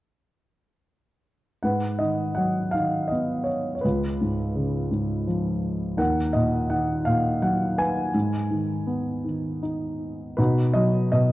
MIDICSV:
0, 0, Header, 1, 2, 480
1, 0, Start_track
1, 0, Tempo, 747198
1, 1040, Time_signature, 3, 2, 24, 8
1, 1995, Tempo, 719424
1, 5355, Tempo, 744417
1, 7404, End_track
2, 0, Start_track
2, 0, Title_t, "Grand piano"
2, 0, Program_c, 0, 0
2, 1044, Note_on_c, 0, 78, 47
2, 1051, Note_on_c, 0, 44, 33
2, 1058, Note_on_c, 0, 71, 39
2, 1143, Control_c, 0, 64, 127
2, 1276, Note_on_c, 0, 75, 50
2, 1286, Note_on_c, 0, 51, 28
2, 1291, Note_off_c, 0, 78, 0
2, 1507, Note_on_c, 0, 78, 53
2, 1525, Note_on_c, 0, 54, 30
2, 1528, Note_off_c, 0, 75, 0
2, 1743, Note_on_c, 0, 77, 55
2, 1746, Note_off_c, 0, 71, 0
2, 1753, Note_off_c, 0, 51, 0
2, 1762, Note_off_c, 0, 78, 0
2, 1763, Note_on_c, 0, 51, 26
2, 1977, Note_on_c, 0, 75, 45
2, 1993, Note_off_c, 0, 77, 0
2, 2003, Note_on_c, 0, 59, 29
2, 2216, Note_on_c, 0, 73, 40
2, 2234, Note_off_c, 0, 75, 0
2, 2410, Note_off_c, 0, 73, 0
2, 2425, Note_on_c, 0, 73, 34
2, 2455, Note_off_c, 0, 54, 0
2, 2459, Note_off_c, 0, 51, 0
2, 2460, Note_off_c, 0, 44, 0
2, 2466, Note_on_c, 0, 71, 44
2, 2470, Note_off_c, 0, 59, 0
2, 2476, Note_off_c, 0, 73, 0
2, 2487, Note_on_c, 0, 37, 38
2, 2491, Control_c, 0, 64, 0
2, 2496, Note_on_c, 0, 65, 30
2, 2603, Control_c, 0, 64, 127
2, 2733, Note_on_c, 0, 44, 31
2, 2962, Note_on_c, 0, 49, 33
2, 3191, Note_off_c, 0, 44, 0
2, 3201, Note_on_c, 0, 44, 33
2, 3413, Note_off_c, 0, 71, 0
2, 3428, Note_off_c, 0, 65, 0
2, 3441, Note_on_c, 0, 53, 33
2, 3890, Note_off_c, 0, 49, 0
2, 3895, Note_off_c, 0, 44, 0
2, 3897, Note_off_c, 0, 37, 0
2, 3903, Note_off_c, 0, 53, 0
2, 3909, Note_on_c, 0, 39, 42
2, 3913, Note_on_c, 0, 78, 52
2, 3917, Note_on_c, 0, 70, 41
2, 3930, Control_c, 0, 64, 0
2, 4044, Control_c, 0, 64, 127
2, 4147, Note_on_c, 0, 75, 49
2, 4157, Note_on_c, 0, 46, 34
2, 4160, Note_off_c, 0, 78, 0
2, 4392, Note_on_c, 0, 78, 52
2, 4394, Note_on_c, 0, 51, 37
2, 4395, Note_off_c, 0, 75, 0
2, 4602, Note_off_c, 0, 70, 0
2, 4628, Note_off_c, 0, 46, 0
2, 4628, Note_on_c, 0, 77, 59
2, 4637, Note_off_c, 0, 78, 0
2, 4638, Note_on_c, 0, 46, 30
2, 4870, Note_on_c, 0, 54, 31
2, 4875, Note_on_c, 0, 78, 51
2, 4877, Note_off_c, 0, 77, 0
2, 5113, Note_on_c, 0, 71, 39
2, 5117, Note_on_c, 0, 80, 65
2, 5123, Note_off_c, 0, 78, 0
2, 5324, Note_off_c, 0, 39, 0
2, 5330, Note_off_c, 0, 51, 0
2, 5339, Note_off_c, 0, 46, 0
2, 5342, Note_off_c, 0, 54, 0
2, 5356, Note_on_c, 0, 44, 41
2, 5365, Control_c, 0, 64, 0
2, 5462, Control_c, 0, 64, 127
2, 5590, Note_on_c, 0, 51, 30
2, 5824, Note_on_c, 0, 59, 32
2, 6057, Note_off_c, 0, 51, 0
2, 6067, Note_on_c, 0, 51, 26
2, 6289, Note_off_c, 0, 71, 0
2, 6291, Note_off_c, 0, 80, 0
2, 6313, Note_on_c, 0, 63, 29
2, 6772, Note_off_c, 0, 59, 0
2, 6774, Note_off_c, 0, 44, 0
2, 6777, Note_off_c, 0, 51, 0
2, 6784, Note_off_c, 0, 63, 0
2, 6791, Note_on_c, 0, 71, 52
2, 6800, Note_on_c, 0, 47, 50
2, 6800, Note_on_c, 0, 66, 42
2, 6803, Note_on_c, 0, 63, 42
2, 6807, Control_c, 0, 64, 0
2, 6915, Control_c, 0, 64, 127
2, 7027, Note_on_c, 0, 75, 57
2, 7039, Note_on_c, 0, 54, 39
2, 7041, Note_off_c, 0, 71, 0
2, 7265, Note_off_c, 0, 75, 0
2, 7271, Note_off_c, 0, 47, 0
2, 7274, Note_on_c, 0, 75, 58
2, 7280, Note_on_c, 0, 47, 42
2, 7404, Note_off_c, 0, 47, 0
2, 7404, Note_off_c, 0, 54, 0
2, 7404, Note_off_c, 0, 63, 0
2, 7404, Note_off_c, 0, 66, 0
2, 7404, Note_off_c, 0, 75, 0
2, 7404, End_track
0, 0, End_of_file